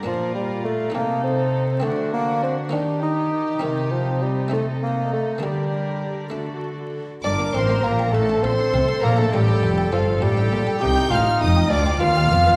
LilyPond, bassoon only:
\new Staff \with { instrumentName = "Bassoon" } { \time 6/8 \key g \minor \tempo 4. = 67 f8 g8 a8 bes8 c'4 | a8 bes8 c'8 d'8 ees'4 | ees8 f8 g8 a8 bes8 a8 | g4. r4. |
d'8 c'8 bes8 a8 c'4 | bes16 a16 g4 f8 g4 | g'8 f'8 ees'8 d'8 f'4 | }